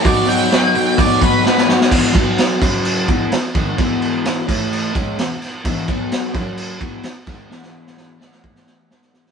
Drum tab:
CC |----------------|x-x-x-x-x-x-x-x-|x-x-x-x-x-x-x-x-|x-x-x-x-x-x-x-x-|
HH |o-o-o-o-o-o-----|----------------|----------------|----------------|
SD |----o-------oooo|----o-------o---|----o-------o-o-|----o-------o-o-|
BD |o-------o-o-----|o-o---o---o---o-|o-----o---o-----|o-o---o---o---o-|

CC |----------------|
HH |----------------|
SD |oo-oo-oo-oo-oooo|
BD |--------o-------|